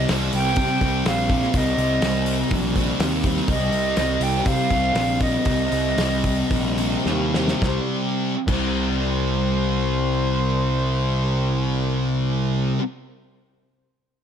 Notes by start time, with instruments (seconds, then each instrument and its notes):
Already playing: distorted electric guitar C4
0.09 picked electric bass C2, distorted electric guitar C3 G3 C4, snare, open hi-hat
0.33 picked electric bass C2, flute G5, open hi-hat
0.56 picked electric bass C3, kick, open hi-hat
0.81 picked electric bass C2, distorted electric guitar G3 C4, kick, open hi-hat
1.06 picked electric bass A#1, distorted electric guitar C3 G3 C4, flute F5, snare, open hi-hat
1.30 distorted electric guitar G3 C4, kick, open hi-hat
1.42 snare
1.54 picked electric bass C2, distorted electric guitar C3 G3 C4, flute D#5, kick, open hi-hat
1.78 picked electric bass C2, open hi-hat
2.02 picked electric bass C2, distorted electric guitar C3 G3, snare, open hi-hat
2.07 distorted electric guitar C4
2.26 open hi-hat
2.51 picked electric bass A#1, kick, open hi-hat
2.76 distorted electric guitar G3 C4, kick, open hi-hat
3.00 picked electric bass D#2, distorted electric guitar C3 G3, snare, open hi-hat
3.04 distorted electric guitar C4
3.24 distorted electric guitar G3 C4, kick, open hi-hat
3.37 snare
3.48 picked electric bass C2, distorted electric guitar C3 G3 C4, flute D#5, kick, open hi-hat
3.72 picked electric bass C2, open hi-hat
3.97 picked electric bass C2, distorted electric guitar C3 G3, snare, open hi-hat
4.01 distorted electric guitar C4
4.20 picked electric bass C2, flute G5, open hi-hat
4.46 picked electric bass C3, flute F5, kick, open hi-hat
4.70 picked electric bass C2, distorted electric guitar G3 C4, kick, open hi-hat
4.94 picked electric bass A#1, distorted electric guitar C3 G3, snare, open hi-hat
4.98 distorted electric guitar C4
5.20 distorted electric guitar G3 C4, flute D#5, kick, open hi-hat
5.45 picked electric bass C2, distorted electric guitar C3 G3 C4, kick, open hi-hat
5.72 picked electric bass C2, open hi-hat
5.97 picked electric bass C2, distorted electric guitar C3 G3 C4, snare, open hi-hat
6.24 kick, open hi-hat
6.50 picked electric bass A#1, kick, open hi-hat
6.78 distorted electric guitar G3 C4, open hi-hat
7.06 picked electric bass D#2, distorted electric guitar C3 G3, snare
7.10 distorted electric guitar C4
7.34 distorted electric guitar G3 C4, snare
7.48 snare
7.62 picked electric bass C2, distorted electric guitar C3 G3, flute C5, kick, snare
7.66 distorted electric guitar C4
8.47 picked electric bass C2, distorted electric guitar C3 G3, flute C5, kick, crash
8.52 distorted electric guitar C4